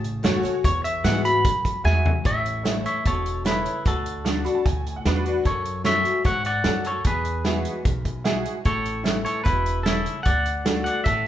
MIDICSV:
0, 0, Header, 1, 7, 480
1, 0, Start_track
1, 0, Key_signature, 3, "major"
1, 0, Tempo, 400534
1, 774, Time_signature, 4, 2, 24, 8
1, 13512, End_track
2, 0, Start_track
2, 0, Title_t, "Clean electric guitar"
2, 0, Program_c, 0, 27
2, 778, Note_on_c, 0, 73, 105
2, 1006, Note_off_c, 0, 73, 0
2, 1011, Note_on_c, 0, 76, 93
2, 1246, Note_off_c, 0, 76, 0
2, 1251, Note_on_c, 0, 78, 89
2, 1486, Note_off_c, 0, 78, 0
2, 1498, Note_on_c, 0, 83, 99
2, 2196, Note_off_c, 0, 83, 0
2, 2218, Note_on_c, 0, 80, 103
2, 2683, Note_off_c, 0, 80, 0
2, 2709, Note_on_c, 0, 73, 68
2, 2712, Note_on_c, 0, 76, 88
2, 3275, Note_off_c, 0, 76, 0
2, 3275, Note_on_c, 0, 74, 88
2, 3375, Note_off_c, 0, 73, 0
2, 3410, Note_off_c, 0, 74, 0
2, 3425, Note_on_c, 0, 73, 61
2, 3427, Note_on_c, 0, 76, 75
2, 3645, Note_off_c, 0, 73, 0
2, 3668, Note_off_c, 0, 76, 0
2, 3674, Note_on_c, 0, 69, 68
2, 3681, Note_on_c, 0, 73, 84
2, 4113, Note_off_c, 0, 69, 0
2, 4148, Note_off_c, 0, 73, 0
2, 4153, Note_on_c, 0, 64, 63
2, 4153, Note_on_c, 0, 71, 76
2, 4591, Note_off_c, 0, 64, 0
2, 4636, Note_on_c, 0, 66, 64
2, 4640, Note_off_c, 0, 71, 0
2, 4645, Note_on_c, 0, 69, 84
2, 6259, Note_off_c, 0, 66, 0
2, 6261, Note_off_c, 0, 69, 0
2, 6540, Note_on_c, 0, 69, 70
2, 6551, Note_on_c, 0, 73, 100
2, 6985, Note_off_c, 0, 69, 0
2, 6997, Note_off_c, 0, 73, 0
2, 7011, Note_on_c, 0, 73, 79
2, 7023, Note_on_c, 0, 76, 97
2, 7460, Note_off_c, 0, 73, 0
2, 7466, Note_off_c, 0, 76, 0
2, 7492, Note_on_c, 0, 73, 83
2, 7506, Note_on_c, 0, 78, 98
2, 7717, Note_off_c, 0, 73, 0
2, 7735, Note_off_c, 0, 78, 0
2, 7744, Note_on_c, 0, 74, 73
2, 7749, Note_on_c, 0, 78, 95
2, 8186, Note_off_c, 0, 74, 0
2, 8224, Note_on_c, 0, 69, 69
2, 8233, Note_on_c, 0, 73, 83
2, 8236, Note_off_c, 0, 78, 0
2, 8444, Note_off_c, 0, 69, 0
2, 8446, Note_off_c, 0, 73, 0
2, 8471, Note_on_c, 0, 68, 66
2, 8472, Note_on_c, 0, 71, 85
2, 9854, Note_off_c, 0, 68, 0
2, 9854, Note_off_c, 0, 71, 0
2, 10375, Note_on_c, 0, 73, 93
2, 10382, Note_on_c, 0, 69, 74
2, 11046, Note_off_c, 0, 73, 0
2, 11049, Note_off_c, 0, 69, 0
2, 11082, Note_on_c, 0, 73, 81
2, 11098, Note_on_c, 0, 69, 60
2, 11304, Note_off_c, 0, 69, 0
2, 11309, Note_on_c, 0, 71, 94
2, 11324, Note_off_c, 0, 73, 0
2, 11328, Note_on_c, 0, 64, 69
2, 11776, Note_off_c, 0, 64, 0
2, 11780, Note_off_c, 0, 71, 0
2, 11784, Note_on_c, 0, 69, 85
2, 11811, Note_on_c, 0, 64, 67
2, 12257, Note_off_c, 0, 64, 0
2, 12262, Note_on_c, 0, 78, 102
2, 12286, Note_off_c, 0, 69, 0
2, 12291, Note_on_c, 0, 74, 83
2, 12948, Note_off_c, 0, 78, 0
2, 12962, Note_off_c, 0, 74, 0
2, 12992, Note_on_c, 0, 78, 90
2, 13025, Note_on_c, 0, 74, 69
2, 13225, Note_off_c, 0, 78, 0
2, 13230, Note_on_c, 0, 76, 97
2, 13241, Note_off_c, 0, 74, 0
2, 13269, Note_on_c, 0, 69, 75
2, 13512, Note_off_c, 0, 69, 0
2, 13512, Note_off_c, 0, 76, 0
2, 13512, End_track
3, 0, Start_track
3, 0, Title_t, "Honky-tonk piano"
3, 0, Program_c, 1, 3
3, 284, Note_on_c, 1, 66, 94
3, 290, Note_on_c, 1, 69, 81
3, 296, Note_on_c, 1, 73, 95
3, 644, Note_off_c, 1, 66, 0
3, 648, Note_off_c, 1, 69, 0
3, 651, Note_off_c, 1, 73, 0
3, 1251, Note_on_c, 1, 66, 74
3, 1256, Note_on_c, 1, 68, 63
3, 1259, Note_on_c, 1, 76, 77
3, 1608, Note_off_c, 1, 66, 0
3, 1611, Note_off_c, 1, 68, 0
3, 1613, Note_off_c, 1, 76, 0
3, 2205, Note_on_c, 1, 66, 73
3, 2206, Note_on_c, 1, 68, 71
3, 2216, Note_on_c, 1, 76, 81
3, 2566, Note_off_c, 1, 66, 0
3, 2567, Note_off_c, 1, 68, 0
3, 2572, Note_off_c, 1, 76, 0
3, 3158, Note_on_c, 1, 64, 67
3, 3166, Note_on_c, 1, 69, 60
3, 3174, Note_on_c, 1, 73, 71
3, 3523, Note_off_c, 1, 64, 0
3, 3527, Note_off_c, 1, 69, 0
3, 3531, Note_off_c, 1, 73, 0
3, 4137, Note_on_c, 1, 64, 68
3, 4137, Note_on_c, 1, 69, 68
3, 4143, Note_on_c, 1, 73, 77
3, 4492, Note_off_c, 1, 64, 0
3, 4492, Note_off_c, 1, 69, 0
3, 4496, Note_off_c, 1, 73, 0
3, 5089, Note_on_c, 1, 62, 70
3, 5092, Note_on_c, 1, 66, 66
3, 5092, Note_on_c, 1, 69, 74
3, 5331, Note_on_c, 1, 83, 64
3, 5446, Note_off_c, 1, 83, 0
3, 5448, Note_off_c, 1, 62, 0
3, 5450, Note_off_c, 1, 66, 0
3, 5450, Note_off_c, 1, 69, 0
3, 5451, Note_on_c, 1, 81, 66
3, 5566, Note_off_c, 1, 81, 0
3, 5577, Note_on_c, 1, 80, 67
3, 5912, Note_off_c, 1, 80, 0
3, 5948, Note_on_c, 1, 78, 67
3, 6050, Note_off_c, 1, 78, 0
3, 6059, Note_on_c, 1, 62, 86
3, 6061, Note_on_c, 1, 66, 80
3, 6067, Note_on_c, 1, 78, 69
3, 6074, Note_on_c, 1, 71, 92
3, 6413, Note_off_c, 1, 62, 0
3, 6414, Note_off_c, 1, 66, 0
3, 6421, Note_off_c, 1, 71, 0
3, 6509, Note_off_c, 1, 78, 0
3, 7001, Note_on_c, 1, 61, 69
3, 7008, Note_on_c, 1, 66, 58
3, 7008, Note_on_c, 1, 69, 72
3, 7363, Note_off_c, 1, 61, 0
3, 7367, Note_off_c, 1, 66, 0
3, 7367, Note_off_c, 1, 69, 0
3, 7963, Note_on_c, 1, 61, 68
3, 7969, Note_on_c, 1, 66, 68
3, 7971, Note_on_c, 1, 69, 83
3, 8324, Note_off_c, 1, 61, 0
3, 8327, Note_off_c, 1, 66, 0
3, 8328, Note_off_c, 1, 69, 0
3, 8930, Note_on_c, 1, 64, 66
3, 8943, Note_on_c, 1, 66, 63
3, 8946, Note_on_c, 1, 68, 77
3, 9287, Note_off_c, 1, 64, 0
3, 9294, Note_off_c, 1, 66, 0
3, 9295, Note_off_c, 1, 68, 0
3, 9879, Note_on_c, 1, 64, 85
3, 9881, Note_on_c, 1, 66, 76
3, 9894, Note_on_c, 1, 68, 95
3, 10241, Note_off_c, 1, 64, 0
3, 10242, Note_off_c, 1, 66, 0
3, 10249, Note_off_c, 1, 68, 0
3, 10829, Note_on_c, 1, 61, 67
3, 10833, Note_on_c, 1, 64, 62
3, 10842, Note_on_c, 1, 69, 69
3, 11196, Note_off_c, 1, 61, 0
3, 11198, Note_off_c, 1, 64, 0
3, 11202, Note_off_c, 1, 69, 0
3, 11810, Note_on_c, 1, 61, 72
3, 11817, Note_on_c, 1, 64, 68
3, 11818, Note_on_c, 1, 69, 77
3, 12166, Note_off_c, 1, 61, 0
3, 12169, Note_off_c, 1, 64, 0
3, 12170, Note_off_c, 1, 69, 0
3, 12763, Note_on_c, 1, 62, 66
3, 12773, Note_on_c, 1, 66, 63
3, 12773, Note_on_c, 1, 69, 75
3, 13122, Note_off_c, 1, 62, 0
3, 13126, Note_off_c, 1, 66, 0
3, 13127, Note_off_c, 1, 69, 0
3, 13512, End_track
4, 0, Start_track
4, 0, Title_t, "Steel-string acoustic guitar"
4, 0, Program_c, 2, 25
4, 0, Note_on_c, 2, 49, 92
4, 274, Note_on_c, 2, 54, 69
4, 284, Note_on_c, 2, 57, 84
4, 291, Note_on_c, 2, 61, 85
4, 295, Note_on_c, 2, 66, 93
4, 503, Note_off_c, 2, 66, 0
4, 514, Note_off_c, 2, 54, 0
4, 518, Note_on_c, 2, 66, 68
4, 520, Note_off_c, 2, 57, 0
4, 523, Note_off_c, 2, 61, 0
4, 541, Note_on_c, 2, 61, 54
4, 719, Note_off_c, 2, 49, 0
4, 757, Note_off_c, 2, 66, 0
4, 768, Note_off_c, 2, 61, 0
4, 770, Note_on_c, 2, 40, 83
4, 1249, Note_on_c, 2, 52, 78
4, 1259, Note_on_c, 2, 56, 80
4, 1272, Note_on_c, 2, 59, 93
4, 1276, Note_on_c, 2, 66, 87
4, 1480, Note_off_c, 2, 66, 0
4, 1483, Note_off_c, 2, 52, 0
4, 1487, Note_off_c, 2, 56, 0
4, 1494, Note_off_c, 2, 59, 0
4, 1494, Note_on_c, 2, 66, 60
4, 1517, Note_on_c, 2, 59, 49
4, 1685, Note_off_c, 2, 40, 0
4, 1725, Note_off_c, 2, 66, 0
4, 1733, Note_on_c, 2, 42, 85
4, 1737, Note_off_c, 2, 59, 0
4, 2191, Note_off_c, 2, 42, 0
4, 2212, Note_on_c, 2, 44, 84
4, 2671, Note_off_c, 2, 44, 0
4, 2695, Note_on_c, 2, 45, 82
4, 3174, Note_on_c, 2, 52, 54
4, 3188, Note_on_c, 2, 57, 59
4, 3194, Note_on_c, 2, 61, 57
4, 3201, Note_on_c, 2, 64, 61
4, 3609, Note_off_c, 2, 45, 0
4, 3632, Note_off_c, 2, 52, 0
4, 3639, Note_off_c, 2, 57, 0
4, 3642, Note_off_c, 2, 61, 0
4, 3645, Note_off_c, 2, 64, 0
4, 3660, Note_on_c, 2, 47, 78
4, 4115, Note_off_c, 2, 47, 0
4, 4133, Note_on_c, 2, 49, 68
4, 4592, Note_off_c, 2, 49, 0
4, 4618, Note_on_c, 2, 50, 81
4, 5080, Note_off_c, 2, 50, 0
4, 5094, Note_on_c, 2, 50, 57
4, 5103, Note_on_c, 2, 57, 54
4, 5112, Note_on_c, 2, 62, 57
4, 5123, Note_on_c, 2, 66, 59
4, 5312, Note_off_c, 2, 66, 0
4, 5326, Note_off_c, 2, 50, 0
4, 5326, Note_on_c, 2, 66, 59
4, 5330, Note_off_c, 2, 57, 0
4, 5335, Note_off_c, 2, 62, 0
4, 5350, Note_on_c, 2, 62, 45
4, 5562, Note_off_c, 2, 66, 0
4, 5574, Note_off_c, 2, 62, 0
4, 5584, Note_on_c, 2, 45, 81
4, 6064, Note_on_c, 2, 50, 58
4, 6071, Note_on_c, 2, 57, 48
4, 6079, Note_on_c, 2, 62, 54
4, 6085, Note_on_c, 2, 66, 56
4, 6285, Note_off_c, 2, 66, 0
4, 6291, Note_off_c, 2, 50, 0
4, 6294, Note_off_c, 2, 57, 0
4, 6298, Note_off_c, 2, 62, 0
4, 6299, Note_on_c, 2, 66, 62
4, 6321, Note_on_c, 2, 62, 46
4, 6492, Note_off_c, 2, 45, 0
4, 6528, Note_off_c, 2, 66, 0
4, 6534, Note_on_c, 2, 42, 87
4, 6540, Note_off_c, 2, 62, 0
4, 7003, Note_on_c, 2, 54, 55
4, 7008, Note_on_c, 2, 57, 56
4, 7015, Note_on_c, 2, 61, 63
4, 7023, Note_on_c, 2, 66, 66
4, 7231, Note_off_c, 2, 66, 0
4, 7240, Note_off_c, 2, 54, 0
4, 7243, Note_off_c, 2, 57, 0
4, 7246, Note_off_c, 2, 61, 0
4, 7246, Note_on_c, 2, 66, 55
4, 7269, Note_on_c, 2, 61, 44
4, 7447, Note_off_c, 2, 42, 0
4, 7481, Note_off_c, 2, 66, 0
4, 7484, Note_on_c, 2, 44, 85
4, 7493, Note_off_c, 2, 61, 0
4, 7946, Note_off_c, 2, 44, 0
4, 8444, Note_on_c, 2, 40, 87
4, 8920, Note_on_c, 2, 52, 60
4, 8928, Note_on_c, 2, 56, 56
4, 8937, Note_on_c, 2, 59, 60
4, 8947, Note_on_c, 2, 66, 63
4, 9361, Note_off_c, 2, 40, 0
4, 9383, Note_off_c, 2, 52, 0
4, 9387, Note_off_c, 2, 56, 0
4, 9392, Note_off_c, 2, 59, 0
4, 9396, Note_off_c, 2, 66, 0
4, 9412, Note_on_c, 2, 42, 75
4, 9869, Note_off_c, 2, 42, 0
4, 9886, Note_on_c, 2, 44, 69
4, 10346, Note_off_c, 2, 44, 0
4, 10365, Note_on_c, 2, 45, 80
4, 10835, Note_on_c, 2, 52, 52
4, 10848, Note_on_c, 2, 57, 56
4, 10857, Note_on_c, 2, 61, 64
4, 10863, Note_on_c, 2, 64, 63
4, 11281, Note_off_c, 2, 45, 0
4, 11300, Note_off_c, 2, 52, 0
4, 11306, Note_off_c, 2, 57, 0
4, 11311, Note_off_c, 2, 61, 0
4, 11314, Note_off_c, 2, 64, 0
4, 11323, Note_on_c, 2, 47, 79
4, 11783, Note_off_c, 2, 47, 0
4, 11815, Note_on_c, 2, 49, 74
4, 12269, Note_off_c, 2, 49, 0
4, 12288, Note_on_c, 2, 50, 80
4, 12760, Note_off_c, 2, 50, 0
4, 12775, Note_on_c, 2, 50, 56
4, 12782, Note_on_c, 2, 57, 61
4, 12789, Note_on_c, 2, 62, 62
4, 12795, Note_on_c, 2, 66, 67
4, 13228, Note_off_c, 2, 50, 0
4, 13232, Note_off_c, 2, 57, 0
4, 13235, Note_off_c, 2, 62, 0
4, 13238, Note_off_c, 2, 66, 0
4, 13258, Note_on_c, 2, 45, 83
4, 13512, Note_off_c, 2, 45, 0
4, 13512, End_track
5, 0, Start_track
5, 0, Title_t, "Upright bass"
5, 0, Program_c, 3, 32
5, 0, Note_on_c, 3, 45, 88
5, 279, Note_off_c, 3, 45, 0
5, 288, Note_on_c, 3, 42, 83
5, 514, Note_off_c, 3, 42, 0
5, 769, Note_on_c, 3, 40, 89
5, 1238, Note_off_c, 3, 40, 0
5, 1246, Note_on_c, 3, 44, 90
5, 1716, Note_off_c, 3, 44, 0
5, 1738, Note_on_c, 3, 42, 83
5, 2203, Note_off_c, 3, 42, 0
5, 2210, Note_on_c, 3, 40, 88
5, 2679, Note_off_c, 3, 40, 0
5, 2699, Note_on_c, 3, 33, 85
5, 3406, Note_off_c, 3, 33, 0
5, 3661, Note_on_c, 3, 28, 75
5, 4367, Note_off_c, 3, 28, 0
5, 4623, Note_on_c, 3, 38, 85
5, 5328, Note_off_c, 3, 38, 0
5, 5578, Note_on_c, 3, 38, 76
5, 5986, Note_off_c, 3, 38, 0
5, 6055, Note_on_c, 3, 40, 75
5, 6464, Note_off_c, 3, 40, 0
5, 6536, Note_on_c, 3, 42, 89
5, 7243, Note_off_c, 3, 42, 0
5, 7489, Note_on_c, 3, 44, 76
5, 7900, Note_off_c, 3, 44, 0
5, 7963, Note_on_c, 3, 42, 81
5, 8376, Note_off_c, 3, 42, 0
5, 8450, Note_on_c, 3, 40, 86
5, 9159, Note_off_c, 3, 40, 0
5, 9408, Note_on_c, 3, 35, 82
5, 10117, Note_off_c, 3, 35, 0
5, 10372, Note_on_c, 3, 33, 86
5, 11079, Note_off_c, 3, 33, 0
5, 11333, Note_on_c, 3, 28, 74
5, 12040, Note_off_c, 3, 28, 0
5, 12295, Note_on_c, 3, 38, 88
5, 13000, Note_off_c, 3, 38, 0
5, 13252, Note_on_c, 3, 33, 77
5, 13512, Note_off_c, 3, 33, 0
5, 13512, End_track
6, 0, Start_track
6, 0, Title_t, "Muted upright bass strokes"
6, 530, Note_on_c, 9, 29, 42
6, 650, Note_off_c, 9, 29, 0
6, 13512, End_track
7, 0, Start_track
7, 0, Title_t, "Drums"
7, 50, Note_on_c, 9, 42, 60
7, 170, Note_off_c, 9, 42, 0
7, 293, Note_on_c, 9, 38, 111
7, 293, Note_on_c, 9, 42, 91
7, 413, Note_off_c, 9, 38, 0
7, 413, Note_off_c, 9, 42, 0
7, 535, Note_on_c, 9, 42, 68
7, 655, Note_off_c, 9, 42, 0
7, 772, Note_on_c, 9, 36, 109
7, 775, Note_on_c, 9, 42, 90
7, 892, Note_off_c, 9, 36, 0
7, 895, Note_off_c, 9, 42, 0
7, 1016, Note_on_c, 9, 42, 65
7, 1136, Note_off_c, 9, 42, 0
7, 1253, Note_on_c, 9, 38, 102
7, 1253, Note_on_c, 9, 42, 83
7, 1373, Note_off_c, 9, 38, 0
7, 1373, Note_off_c, 9, 42, 0
7, 1499, Note_on_c, 9, 42, 66
7, 1619, Note_off_c, 9, 42, 0
7, 1735, Note_on_c, 9, 36, 118
7, 1736, Note_on_c, 9, 42, 87
7, 1855, Note_off_c, 9, 36, 0
7, 1856, Note_off_c, 9, 42, 0
7, 1977, Note_on_c, 9, 36, 80
7, 1983, Note_on_c, 9, 42, 61
7, 2097, Note_off_c, 9, 36, 0
7, 2103, Note_off_c, 9, 42, 0
7, 2224, Note_on_c, 9, 38, 58
7, 2344, Note_off_c, 9, 38, 0
7, 2464, Note_on_c, 9, 43, 90
7, 2584, Note_off_c, 9, 43, 0
7, 2700, Note_on_c, 9, 36, 106
7, 2702, Note_on_c, 9, 42, 72
7, 2819, Note_off_c, 9, 36, 0
7, 2822, Note_off_c, 9, 42, 0
7, 2944, Note_on_c, 9, 42, 58
7, 3063, Note_off_c, 9, 42, 0
7, 3181, Note_on_c, 9, 38, 100
7, 3181, Note_on_c, 9, 42, 79
7, 3301, Note_off_c, 9, 38, 0
7, 3301, Note_off_c, 9, 42, 0
7, 3423, Note_on_c, 9, 42, 64
7, 3542, Note_off_c, 9, 42, 0
7, 3663, Note_on_c, 9, 36, 101
7, 3664, Note_on_c, 9, 42, 85
7, 3783, Note_off_c, 9, 36, 0
7, 3784, Note_off_c, 9, 42, 0
7, 3904, Note_on_c, 9, 42, 58
7, 4024, Note_off_c, 9, 42, 0
7, 4142, Note_on_c, 9, 38, 98
7, 4142, Note_on_c, 9, 42, 84
7, 4262, Note_off_c, 9, 38, 0
7, 4262, Note_off_c, 9, 42, 0
7, 4380, Note_on_c, 9, 42, 63
7, 4500, Note_off_c, 9, 42, 0
7, 4623, Note_on_c, 9, 36, 102
7, 4627, Note_on_c, 9, 42, 84
7, 4743, Note_off_c, 9, 36, 0
7, 4747, Note_off_c, 9, 42, 0
7, 4864, Note_on_c, 9, 42, 58
7, 4984, Note_off_c, 9, 42, 0
7, 5102, Note_on_c, 9, 38, 95
7, 5102, Note_on_c, 9, 42, 71
7, 5222, Note_off_c, 9, 38, 0
7, 5222, Note_off_c, 9, 42, 0
7, 5344, Note_on_c, 9, 42, 60
7, 5464, Note_off_c, 9, 42, 0
7, 5581, Note_on_c, 9, 36, 110
7, 5586, Note_on_c, 9, 42, 82
7, 5701, Note_off_c, 9, 36, 0
7, 5706, Note_off_c, 9, 42, 0
7, 5830, Note_on_c, 9, 42, 55
7, 5950, Note_off_c, 9, 42, 0
7, 6058, Note_on_c, 9, 38, 96
7, 6058, Note_on_c, 9, 42, 76
7, 6177, Note_off_c, 9, 38, 0
7, 6177, Note_off_c, 9, 42, 0
7, 6300, Note_on_c, 9, 42, 58
7, 6420, Note_off_c, 9, 42, 0
7, 6537, Note_on_c, 9, 36, 101
7, 6537, Note_on_c, 9, 42, 80
7, 6657, Note_off_c, 9, 36, 0
7, 6657, Note_off_c, 9, 42, 0
7, 6776, Note_on_c, 9, 42, 55
7, 6896, Note_off_c, 9, 42, 0
7, 7007, Note_on_c, 9, 38, 98
7, 7007, Note_on_c, 9, 42, 71
7, 7127, Note_off_c, 9, 38, 0
7, 7127, Note_off_c, 9, 42, 0
7, 7252, Note_on_c, 9, 42, 57
7, 7371, Note_off_c, 9, 42, 0
7, 7489, Note_on_c, 9, 42, 87
7, 7490, Note_on_c, 9, 36, 110
7, 7609, Note_off_c, 9, 42, 0
7, 7610, Note_off_c, 9, 36, 0
7, 7725, Note_on_c, 9, 42, 57
7, 7845, Note_off_c, 9, 42, 0
7, 7958, Note_on_c, 9, 38, 110
7, 7958, Note_on_c, 9, 42, 84
7, 8078, Note_off_c, 9, 38, 0
7, 8078, Note_off_c, 9, 42, 0
7, 8202, Note_on_c, 9, 42, 60
7, 8322, Note_off_c, 9, 42, 0
7, 8442, Note_on_c, 9, 42, 87
7, 8448, Note_on_c, 9, 36, 108
7, 8561, Note_off_c, 9, 42, 0
7, 8568, Note_off_c, 9, 36, 0
7, 8685, Note_on_c, 9, 42, 58
7, 8805, Note_off_c, 9, 42, 0
7, 8925, Note_on_c, 9, 38, 100
7, 8925, Note_on_c, 9, 42, 73
7, 9045, Note_off_c, 9, 38, 0
7, 9045, Note_off_c, 9, 42, 0
7, 9166, Note_on_c, 9, 42, 64
7, 9286, Note_off_c, 9, 42, 0
7, 9409, Note_on_c, 9, 42, 81
7, 9410, Note_on_c, 9, 36, 110
7, 9528, Note_off_c, 9, 42, 0
7, 9530, Note_off_c, 9, 36, 0
7, 9647, Note_on_c, 9, 42, 57
7, 9650, Note_on_c, 9, 36, 73
7, 9767, Note_off_c, 9, 42, 0
7, 9770, Note_off_c, 9, 36, 0
7, 9890, Note_on_c, 9, 38, 104
7, 9890, Note_on_c, 9, 42, 75
7, 10010, Note_off_c, 9, 38, 0
7, 10010, Note_off_c, 9, 42, 0
7, 10132, Note_on_c, 9, 42, 57
7, 10252, Note_off_c, 9, 42, 0
7, 10370, Note_on_c, 9, 42, 73
7, 10372, Note_on_c, 9, 36, 100
7, 10490, Note_off_c, 9, 42, 0
7, 10492, Note_off_c, 9, 36, 0
7, 10611, Note_on_c, 9, 42, 57
7, 10730, Note_off_c, 9, 42, 0
7, 10852, Note_on_c, 9, 38, 101
7, 10852, Note_on_c, 9, 42, 71
7, 10972, Note_off_c, 9, 38, 0
7, 10972, Note_off_c, 9, 42, 0
7, 11092, Note_on_c, 9, 42, 61
7, 11212, Note_off_c, 9, 42, 0
7, 11333, Note_on_c, 9, 42, 78
7, 11335, Note_on_c, 9, 36, 104
7, 11452, Note_off_c, 9, 42, 0
7, 11455, Note_off_c, 9, 36, 0
7, 11575, Note_on_c, 9, 42, 58
7, 11695, Note_off_c, 9, 42, 0
7, 11815, Note_on_c, 9, 38, 105
7, 11815, Note_on_c, 9, 42, 78
7, 11935, Note_off_c, 9, 38, 0
7, 11935, Note_off_c, 9, 42, 0
7, 12054, Note_on_c, 9, 42, 60
7, 12174, Note_off_c, 9, 42, 0
7, 12288, Note_on_c, 9, 42, 80
7, 12295, Note_on_c, 9, 36, 108
7, 12408, Note_off_c, 9, 42, 0
7, 12415, Note_off_c, 9, 36, 0
7, 12529, Note_on_c, 9, 42, 59
7, 12649, Note_off_c, 9, 42, 0
7, 12772, Note_on_c, 9, 38, 104
7, 12772, Note_on_c, 9, 42, 75
7, 12891, Note_off_c, 9, 38, 0
7, 12891, Note_off_c, 9, 42, 0
7, 13014, Note_on_c, 9, 42, 64
7, 13134, Note_off_c, 9, 42, 0
7, 13247, Note_on_c, 9, 42, 90
7, 13254, Note_on_c, 9, 36, 106
7, 13367, Note_off_c, 9, 42, 0
7, 13374, Note_off_c, 9, 36, 0
7, 13512, End_track
0, 0, End_of_file